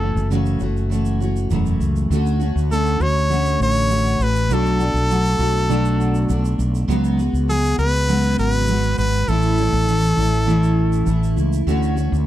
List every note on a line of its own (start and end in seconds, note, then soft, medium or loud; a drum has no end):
0.00 0.12 F#1 medium
0.00 0.30 E3 soft
0.00 0.30 A3 soft
0.00 0.31 C#4 medium
0.00 0.30 F#4 medium
0.00 0.31 A4 medium
0.15 0.57 F#1 loud
0.15 shaker soft
0.30 0.60 F#2 medium
0.30 0.60 C#3 medium
0.30 0.61 E3 medium
0.30 0.61 A3 medium
0.30 0.60 C#4 loud
0.30 0.59 F#4 medium
0.30 shaker medium
0.46 shaker medium
0.60 1.46 F#1 medium
0.60 0.88 E3 medium
0.60 0.90 A3 medium
0.60 0.90 C#4 medium
0.60 0.90 F#4 medium
0.60 shaker soft
0.77 shaker soft
0.90 1.20 E3 medium
0.90 1.21 A3 medium
0.90 1.20 C#4 medium
0.90 1.19 F#4 medium
0.90 shaker medium
1.05 shaker medium
1.20 1.50 E3 medium
1.20 1.50 A3 soft
1.20 1.51 C#4 medium
1.20 1.50 F#4 medium
1.20 shaker soft
1.36 shaker soft
1.50 1.78 E1 loud
1.50 2.10 F#2 medium
1.50 2.10 C#3 medium
1.50 2.10 E3 medium
1.50 2.11 A3 medium
1.50 2.11 C#4 medium
1.50 2.12 F#4 medium
1.50 shaker medium
1.66 shaker soft
1.80 2.08 C#2 medium
1.80 shaker soft
1.96 shaker soft
2.10 2.52 D2 medium
2.10 2.40 D3 medium
2.10 2.41 A3 loud
2.10 2.40 C#4 loud
2.10 2.38 F#4 loud
2.10 shaker medium
2.26 shaker soft
2.39 2.70 A3 medium
2.39 2.70 C#4 medium
2.39 2.70 F#4 medium
2.39 shaker soft
2.56 2.97 D2 loud
2.56 shaker soft
2.70 3.00 D3 medium
2.70 3.01 A3 medium
2.70 2.99 C#4 medium
2.70 2.98 F#4 medium
2.70 3.03 A4 loud
2.70 shaker medium
2.86 shaker medium
2.99 3.56 D2 medium
2.99 3.29 A3 soft
2.99 3.29 C#4 soft
2.99 3.29 F#4 soft
2.99 3.61 C#5 loud
2.99 shaker soft
3.17 shaker soft
3.29 3.89 D3 medium
3.29 3.90 A3 medium
3.29 3.90 C#4 medium
3.29 3.91 F#4 medium
3.29 shaker medium
3.46 shaker medium
3.60 4.16 A1 medium
3.60 4.24 C#5 loud
3.60 shaker soft
3.76 shaker soft
3.89 4.20 D3 medium
3.89 4.20 A3 medium
3.89 4.20 C#4 medium
3.89 4.18 F#4 medium
3.89 shaker medium
4.06 shaker soft
4.19 4.47 A1 medium
4.19 4.49 A3 soft
4.19 4.50 C#4 soft
4.19 4.50 F#4 soft
4.19 4.55 B4 loud
4.19 shaker medium
4.36 shaker medium
4.49 4.91 B1 loud
4.49 4.80 B2 medium
4.49 4.80 F#3 medium
4.49 4.80 A3 medium
4.49 4.80 D4 medium
4.49 4.78 F#4 medium
4.49 shaker medium
4.53 6.61 A4 loud
4.66 shaker medium
4.80 5.09 A3 soft
4.80 5.10 D4 medium
4.80 5.09 F#4 medium
4.80 shaker medium
4.94 5.35 B1 medium
4.94 shaker soft
5.10 5.39 F#3 medium
5.10 5.40 A3 medium
5.10 5.40 D4 medium
5.10 5.39 F#4 medium
5.10 shaker medium
5.25 shaker medium
5.39 6.25 B1 loud
5.39 5.69 A3 soft
5.39 5.69 D4 medium
5.39 5.69 F#4 medium
5.39 shaker soft
5.57 shaker soft
5.69 6.29 B2 medium
5.69 6.28 F#3 medium
5.69 6.28 A3 loud
5.69 6.29 D4 loud
5.69 6.30 F#4 loud
5.69 shaker medium
5.85 shaker medium
6.01 shaker soft
6.15 shaker soft
6.29 6.57 B1 medium
6.29 6.88 F#3 medium
6.29 6.88 A3 medium
6.29 6.89 D4 medium
6.29 6.89 F#4 medium
6.29 shaker medium
6.45 shaker medium
6.59 6.86 B1 loud
6.59 shaker medium
6.75 shaker medium
6.88 7.30 C#2 loud
6.88 7.18 C#3 medium
6.88 7.18 F#3 loud
6.88 7.18 G#3 loud
6.88 7.17 B3 loud
6.88 7.16 F#4 loud
6.88 shaker medium
7.04 shaker medium
7.17 7.47 G#3 medium
7.17 7.48 B3 medium
7.17 7.48 F#4 medium
7.17 shaker soft
7.33 7.75 C#2 medium
7.33 shaker soft
7.48 7.78 F#3 medium
7.48 7.78 G#3 medium
7.48 7.78 B3 medium
7.48 7.76 F#4 medium
7.48 7.77 G#4 loud
7.48 shaker medium
7.65 shaker medium
7.78 8.34 C#2 medium
7.78 8.08 G#3 soft
7.78 8.08 B3 soft
7.78 8.08 F#4 medium
7.78 8.35 B4 loud
7.78 shaker soft
7.95 shaker soft
8.08 8.68 C#3 medium
8.08 8.66 F#3 medium
8.08 8.67 G#3 medium
8.08 8.68 B3 medium
8.08 8.69 F#4 medium
8.08 shaker medium
8.23 shaker medium
8.38 8.94 G#1 medium
8.38 8.95 B4 loud
8.38 shaker soft
8.53 shaker soft
8.67 9.28 F#3 medium
8.67 9.28 G#3 medium
8.67 9.29 B3 medium
8.67 9.29 F#4 medium
8.67 shaker medium
8.83 shaker soft
8.98 9.26 G#1 medium
8.98 9.30 B4 loud
8.98 shaker medium
9.13 shaker soft
9.28 9.69 A1 loud
9.28 9.58 A2 medium
9.28 9.58 E3 medium
9.28 9.58 A3 medium
9.28 9.58 C#4 medium
9.28 9.56 E4 loud
9.28 11.37 A4 loud
9.28 shaker medium
9.42 shaker medium
9.57 9.86 A3 medium
9.57 9.87 C#4 medium
9.57 9.88 E4 medium
9.57 shaker soft
9.73 10.14 A1 loud
9.73 shaker soft
9.87 10.17 E3 medium
9.87 10.18 A3 medium
9.87 10.17 C#4 medium
9.87 10.15 E4 medium
9.87 shaker medium
10.03 shaker medium
10.17 11.03 A1 medium
10.17 10.46 A3 soft
10.17 10.47 C#4 medium
10.17 10.47 E4 medium
10.34 shaker soft
10.46 11.06 A2 medium
10.46 11.04 E3 loud
10.46 11.06 A3 loud
10.46 11.07 C#4 medium
10.46 11.07 E4 loud
10.46 shaker medium
10.63 shaker medium
10.92 shaker soft
11.06 11.34 A1 loud
11.06 11.36 E3 medium
11.06 11.37 A3 medium
11.06 11.36 C#4 medium
11.06 11.35 E4 medium
11.06 shaker medium
11.23 shaker soft
11.36 11.65 C#2 loud
11.36 11.66 A3 soft
11.36 11.67 C#4 soft
11.36 11.66 E4 medium
11.36 shaker medium
11.53 shaker medium
11.67 12.08 D2 medium
11.67 11.97 D3 medium
11.67 11.96 A3 loud
11.67 11.96 C#4 loud
11.67 11.94 F#4 loud
11.67 shaker medium
11.83 shaker medium
11.95 12.25 A3 medium
11.95 12.27 C#4 medium
11.95 12.26 F#4 medium
11.95 shaker soft
12.12 12.27 D2 loud
12.12 shaker soft